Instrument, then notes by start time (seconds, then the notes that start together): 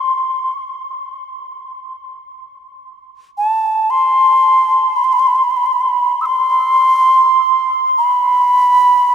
ocarina
Already playing: C6
3.38 A5
3.90 C6
4.96 B5
5.04 C6
5.13 B5
5.19 C6
5.27 B5
5.35 C6
5.44 B5
5.51 C6
5.57 B5
5.66 C6
5.73 B5
5.81 C6
5.88 B5
6.21 E6
6.26 C6
7.98 B5